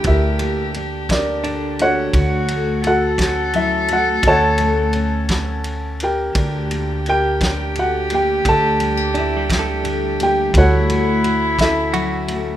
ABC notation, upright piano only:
X:1
M:6/8
L:1/8
Q:3/8=57
K:Glyd
V:1 name="Upright piano"
[EG_Be]2 z [DBd]2 [FAcf]- | [FAcf]2 [FAf]2 [Ee] [Ff] | [Acfa]4- [Acfa] [G_Bg]- | [G_Bg]2 [GBg]2 [Ff] [Gg] |
[Aa]4- [Aa] [Gg] | [FAcf]3 [EAe]3 |]